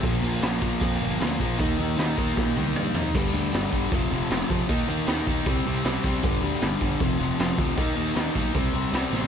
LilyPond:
<<
  \new Staff \with { instrumentName = "Distorted electric guitar" } { \clef bass \time 4/4 \key ees \lydian \tempo 4 = 155 <bes, f bes>8 <bes, f bes>8 <bes, f bes>8 <bes, f bes>8 <bes, f bes>8 <bes, f bes>8 <bes, f bes>8 <bes, f bes>8 | <ees bes ees'>8 <ees bes ees'>8 <ees bes ees'>8 <ees bes ees'>8 <ees bes ees'>8 <ees bes ees'>8 <ees bes ees'>8 <ees bes ees'>8 | <g, d g>8 <g, d g>8 <g, d g>8 <g, d g>8 <f, c f>8 <f, c f>8 <f, c f>8 <f, c f>8 | <ees bes ees'>8 <ees bes ees'>8 <ees bes ees'>8 <ees bes ees'>8 <c g c'>8 <c g c'>8 <c g c'>8 <c g c'>8 |
<g, d g>8 <g, d g>8 <g, d g>8 <g, d g>8 <f, c f>8 <f, c f>8 <f, c f>8 <f, c f>8 | <ees bes ees'>8 <ees bes ees'>8 <ees bes ees'>8 <ees bes ees'>8 <c g c'>8 <c g c'>8 <c g c'>8 <c g c'>8 | }
  \new Staff \with { instrumentName = "Distorted electric guitar" } { \clef bass \time 4/4 \key ees \lydian <bes, f bes>8 <bes, f bes>8 <bes, f bes>8 <bes, f bes>8 <bes, f bes>8 <bes, f bes>8 <bes, f bes>8 <bes, f bes>8 | <ees bes ees'>8 <ees bes ees'>8 <ees bes ees'>8 <ees bes ees'>8 <ees bes ees'>8 <ees bes ees'>8 <ees bes ees'>8 <ees bes ees'>8 | <g, d g>8 <g, d g>8 <g, d g>8 <g, d g>8 <f, c f>8 <f, c f>8 <f, c f>8 <f, c f>8 | <ees bes ees'>8 <ees bes ees'>8 <ees bes ees'>8 <ees bes ees'>8 <c g c'>8 <c g c'>8 <c g c'>8 <c g c'>8 |
<g, d g>8 <g, d g>8 <g, d g>8 <g, d g>8 <f, c f>8 <f, c f>8 <f, c f>8 <f, c f>8 | <ees bes ees'>8 <ees bes ees'>8 <ees bes ees'>8 <ees bes ees'>8 <c g c'>8 <c g c'>8 <c g c'>8 <c g c'>8 | }
  \new Staff \with { instrumentName = "Picked electric bass" } { \clef bass \time 4/4 \key ees \lydian bes,,8 bes,,8 bes,,8 bes,,8 f,8 g,,8 d,8 bes,,8 | ees,8 ees,8 ees,8 ees,8 bes,8 c,8 g,8 f,8 | g,,8 d,8 g,,8 g,,8 f,,8 f,,8 f,,8 f,8 | ees,8 ees,8 ees,8 ees,8 c,8 c,8 c,8 c,8 |
g,,8 d,8 g,,8 g,,8 f,,8 f,,8 f,,8 d,8 | ees,8 ees,8 ees,8 b,,8 c,8 c,8 c,8 a,,8 | }
  \new DrumStaff \with { instrumentName = "Drums" } \drummode { \time 4/4 <cymc bd>8 cymc8 <cymc sn>8 <cymc bd>8 <cymc bd>8 cymc8 <cymc sn>8 <cymc bd>8 | <cymc bd>8 cymc8 <cymc sn>8 <cymc bd>8 <bd sn>8 tommh8 toml8 tomfh8 | <cymc bd>4 <cymc sn>8 bd8 <cymc bd>4 <cymc sn>8 bd8 | <cymc bd>4 <cymc sn>8 bd8 <cymc bd>4 <cymc sn>8 bd8 |
<cymc bd>4 <cymc sn>8 bd8 <cymc bd>4 <cymc sn>8 bd8 | <cymc bd>4 <cymc sn>8 bd8 <cymc bd>4 <cymc sn>8 sn8 | }
>>